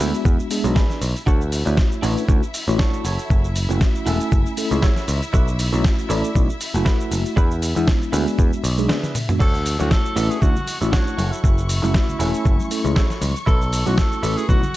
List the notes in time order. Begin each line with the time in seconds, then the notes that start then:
Already playing: E4 E5
0.00 D2 G#3 B3 D4 E4 F#4 G#4 B4, open hi-hat, shaker
0.14 shaker
0.25 E2, kick, shaker
0.40 shaker
0.50 G#3 B3 D4 G#4, open hi-hat, shaker
0.64 B1 G#3 B3 D4 F#4, muted clean electric guitar stroke, shaker
0.75 D4 E4 G#4 B4, kick, snare, shaker
0.90 snare, shaker
1.01 B1, open hi-hat, shaker
1.16 shaker
1.26 D2 D4 E4 F#4 A4 C#5 E5, kick, shaker
1.41 shaker
1.51 muted clean electric guitar stroke, open hi-hat, shaker
1.65 D2 A3 E4 F#4 C#5, muted clean electric guitar stroke, shaker
1.77 muted clean electric guitar stroke, kick, snare, shaker
1.92 shaker
2.02 A1 A3 C#4 D4 E4 F#4 A4 B4 C#5, open hi-hat, shaker
2.17 shaker
2.28 D2 A3 C#4 E4 F#4, kick, shaker
2.43 shaker
2.54 open hi-hat, shaker
2.67 A1 A3 E4 F#4 C#5, muted clean electric guitar stroke, shaker
2.79 D4 F#4 A4 C#5, kick, snare, shaker
2.94 shaker
3.04 F#1 E4 F#4 A4 C#5, open hi-hat, shaker
3.19 shaker
3.30 F#1, kick, shaker
3.44 shaker
3.55 muted clean electric guitar stroke, open hi-hat, shaker
3.69 F#1 A3 C#4 E4 F#4, muted clean electric guitar stroke, shaker
3.81 muted clean electric guitar stroke, kick, snare, shaker
3.95 shaker
4.06 E1 A3 C#4 E4 F#4 A4 E5 G#5, open hi-hat, shaker
4.21 shaker
4.32 F#1, kick, shaker
4.46 shaker
4.57 A3 C#4 E4 A4, open hi-hat, shaker
4.71 C#2 A3 C#4 E4 G#4, muted clean electric guitar stroke, shaker
4.82 E4 F#4 A4 C#5, kick, snare, shaker
4.96 snare, shaker
5.08 C#2, open hi-hat, shaker
5.22 shaker
5.33 B1 E4 F#4 A4 B4, kick, shaker
5.48 shaker
5.58 muted clean electric guitar stroke, open hi-hat, shaker
5.72 B1 A3 C#4 E4 F#4, muted clean electric guitar stroke, shaker
5.84 muted clean electric guitar stroke, kick, snare, shaker
5.99 shaker
6.09 A1 A3 C#4 E4 F#4 A4 D5, open hi-hat, shaker
6.24 shaker
6.35 B1 A3 C#4 E4 F#4, kick, shaker
6.49 shaker
6.61 open hi-hat, shaker
6.74 F#1 A3 E4 F#4, muted clean electric guitar stroke, shaker
6.85 E4 F#4 A4 B4, kick, snare, shaker
7.00 shaker
7.11 F#1, open hi-hat, shaker
7.26 shaker
7.36 E2 D4 E4 G#4 B4, kick, shaker
7.51 shaker
7.62 muted clean electric guitar stroke, open hi-hat, shaker
7.75 E2 G#3 B3 D4 E4, muted clean electric guitar stroke, shaker
7.87 muted clean electric guitar stroke, kick, snare, shaker
8.02 shaker
8.12 D2 G#3 B3 D4 E4 F#4 G#4 B4, open hi-hat, shaker
8.27 shaker
8.39 E2, kick, shaker
8.53 shaker
8.64 B1, open hi-hat, shaker
8.77 G#3 B3 D4 G#4, muted clean electric guitar stroke, shaker
8.89 D4 E4 G#4 B4, snare, high tom, shaker
9.03 snare, high tom, shaker
9.15 open hi-hat, mid tom, shaker
9.29 G#3 B3 D4 F#4, mid tom, shaker
9.39 D2 D4 F#4 A4 C#5 C#6, kick, crash, cabasa, shaker
9.55 shaker
9.65 muted clean electric guitar stroke, open hi-hat, cabasa, shaker
9.79 D2 A3 E4 F#4 C#5, muted clean electric guitar stroke, high conga, cabasa, shaker
9.91 A4, muted clean electric guitar stroke, kick, snare, muted conga, cabasa, shaker
10.05 shaker
10.16 A1 A3 C#4 D4 E4 F#4 A4 B4 E5, open hi-hat, cabasa, shaker
10.30 G#4, cabasa, shaker
10.42 D2 A3 C#4 E4 F#4, kick, low conga, cabasa, shaker
10.56 high conga, low conga, shaker
10.68 open hi-hat, muted conga, cabasa, shaker
10.81 A1 A3 E4 F#4, muted clean electric guitar stroke, cabasa, shaker
10.92 D4 F#4 A4 C#5, kick, snare, shaker
11.07 shaker
11.17 F#1 E4 F#4 A4 C#5, open hi-hat, high conga, cabasa, shaker
11.31 E4, cabasa, shaker
11.43 F#1 E4, kick, cabasa, shaker
11.58 shaker
11.68 muted clean electric guitar stroke, open hi-hat, cabasa, shaker
11.82 F#1 A3 C#4 E4 F#4, muted clean electric guitar stroke, high conga, cabasa, shaker
11.94 muted clean electric guitar stroke, kick, snare, muted conga, cabasa, shaker
12.09 low conga, shaker
12.19 E1 A3 C#4 E4 F#4 A4 C#5 G#5, open hi-hat, cabasa, shaker
12.34 cabasa, shaker
12.45 F#1, kick, cabasa, shaker
12.59 high conga, shaker
12.70 A3 C#4 E4 A4, open hi-hat, cabasa, shaker
12.84 C#2 A3 C#4 E4 G#4, muted clean electric guitar stroke, muted conga, cabasa, shaker
12.96 E4 F#4 A4 C#5, kick, snare, cabasa, shaker
13.10 snare, shaker
13.21 C#2, open hi-hat, high conga, cabasa, shaker
13.36 muted conga, cabasa, shaker
13.46 B1 E4 F#4 A4 B4, kick, cabasa, shaker
13.61 shaker
13.72 muted clean electric guitar stroke, open hi-hat, cabasa, shaker
13.86 B1 A3 C#4 E4 F#4, muted clean electric guitar stroke, high conga, cabasa, shaker
13.97 A4, muted clean electric guitar stroke, kick, snare, muted conga, cabasa, shaker
14.12 shaker
14.23 A1 A3 C#4 E4 F#4 A4 B4, open hi-hat, cabasa, shaker
14.37 G#4, cabasa, shaker
14.48 B1 A3 C#4 E4 F#4, kick, low conga, cabasa, shaker
14.62 high conga, low conga, shaker